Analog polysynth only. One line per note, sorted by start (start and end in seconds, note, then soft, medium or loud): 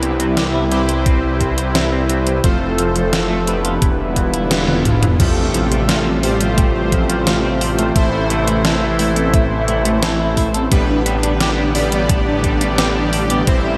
0.00 0.67 B3 medium
0.00 0.67 C4 medium
0.00 0.67 E4 medium
0.00 0.67 G4 medium
0.00 0.67 B4 medium
0.72 2.40 C4 medium
0.72 2.40 E4 medium
0.72 2.40 G4 medium
0.72 2.40 B4 medium
0.72 2.40 C5 loud
2.44 3.43 A3 medium
2.44 3.43 C4 medium
2.44 3.43 F4 medium
2.44 3.43 A4 medium
2.44 3.43 C5 loud
3.47 5.16 B3 medium
3.47 5.16 D4 medium
3.47 5.16 E4 medium
3.47 5.16 G4 medium
3.47 5.16 B4 medium
5.20 6.19 A3 medium
5.20 6.19 C4 medium
5.20 6.19 F4 medium
5.20 6.19 G4 medium
5.20 6.19 A4 medium
6.23 7.92 A3 medium
6.23 7.92 C4 medium
6.23 7.92 F4 medium
6.23 7.92 G4 medium
6.23 7.92 C5 loud
7.96 8.95 A3 medium
7.96 8.95 C4 medium
7.96 8.95 E4 medium
7.96 8.95 A4 medium
7.96 8.95 C5 loud
8.99 10.67 A3 medium
8.99 10.67 C4 medium
8.99 10.67 E4 medium
8.99 10.67 A4 medium
8.99 10.67 C5 medium
10.72 11.71 G3 medium
10.72 11.71 B3 medium
10.72 11.71 D4 medium
10.72 11.71 G4 medium
10.72 11.71 B4 medium
11.75 13.43 G3 medium
11.75 13.43 B3 medium
11.75 13.43 D4 medium
11.75 13.43 G4 medium
11.75 13.43 D5 loud
13.47 13.78 G3 medium
13.47 13.78 C4 medium
13.47 13.78 E4 medium
13.47 13.78 G4 medium
13.47 13.78 C5 loud